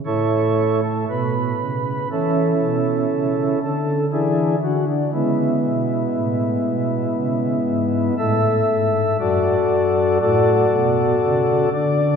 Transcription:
X:1
M:4/4
L:1/16
Q:1/4=59
K:A
V:1 name="Pipe organ"
[EAc]3 A B4 [CEA]6 A2 | [DEG]2 F D [G,B,E]12 | [Ae]4 [FAd]4 [FAd]6 d2 |]
V:2 name="Pipe organ" clef=bass
A,,4 B,,2 C,2 E,2 B,,2 C,2 D,2 | E,2 D,2 C,2 B,,2 A,,2 B,,2 C,2 G,,2 | A,,2 G,,2 F,,4 A,,2 B,,2 C,2 D,2 |]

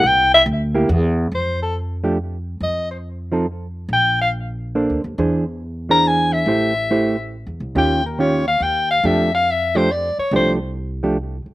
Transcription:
X:1
M:3/4
L:1/8
Q:"Swing" 1/4=140
K:F
V:1 name="Soprano saxophone"
g e z4 | c A z4 | _e c z4 | g f z4 |
z3 b ^g e- | e4 z2 | g B _d f g f | e f e c d _d |
c z4 z |]
V:2 name="Hollow-body jazz guitar"
z3 [B,EG] z2 | z3 [F,A,DG] z2 | z3 [F,C_EA] z2 | z4 [B,DAc] z |
[E,D^G^B] z2 [E,DGB]3 | [A,EGc] z [A,EGc] z3 | [_E,_DFG] z [E,DFG] z3 | [F,A,DG] z2 [F,A,DG] z2 |
[F,A,DG] z2 [F,A,DG] z2 |]
V:3 name="Upright bass" clef=bass
C,,2 D,,2 E,,2 | F,,6 | F,,6 | B,,,4- (3B,,, D,, _E,, |
E,,6 | A,,,4- (3A,,, E,, C,, | _E,,4 E,,2 | F,,4- F,, z |
C,,4- C,, z |]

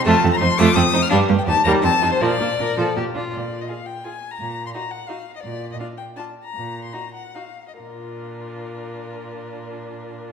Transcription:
X:1
M:3/4
L:1/16
Q:1/4=162
K:Bb
V:1 name="Violin"
a3 b c'2 d'2 e'3 f' | f3 g a2 b2 a3 c | d8 z4 | d3 e f2 g2 _a3 b- |
b3 c' b2 _g2 f3 e | d3 e f2 g2 a3 b- | b3 c' b2 _g2 f3 e | B12- |
B12 |]
V:2 name="Violin"
F2 A2 c2 F2 A2 c2 | D2 G2 G2 B,2 E2 F2 | B,2 D2 B2 A2 G2 F2 | z4 _A4 A4 |
z4 _G4 G4 | z4 F4 F4 | z4 _G4 G4 | F12- |
F12 |]
V:3 name="Viola"
A,2 C2 E2 A,2 C2 E2 | G,2 B,2 E2 G,2 C2 E2 | F,2 B,2 D2 F,2 B,2 D2 | z4 F4 F4 |
z4 E4 E4 | z4 D4 D4 | z4 E4 E4 | D12- |
D12 |]
V:4 name="Cello" clef=bass
F,,2 F,,2 F,,2 F,,2 F,,2 F,,2 | G,,2 G,,2 E,,2 E,,2 F,,2 F,,2 | B,,2 B,,2 B,,2 B,,2 B,,2 B,,2 | B,,4 z8 |
B,,4 z8 | B,,4 z8 | B,,4 z8 | B,,12- |
B,,12 |]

